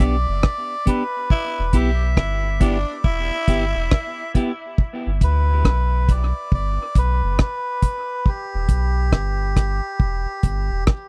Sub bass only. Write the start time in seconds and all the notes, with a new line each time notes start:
0.00 B1
0.28 F#1
1.59 E1
1.74 B1
2.17 G1
3.05 E1
3.48 G1
3.76 E1
5.06 G1
5.22 D2
5.65 B1
6.52 G1
6.96 B1
7.23 F#1
8.54 E1
8.69 B1
9.13 G1
10.00 E1
10.44 G1
10.71 E1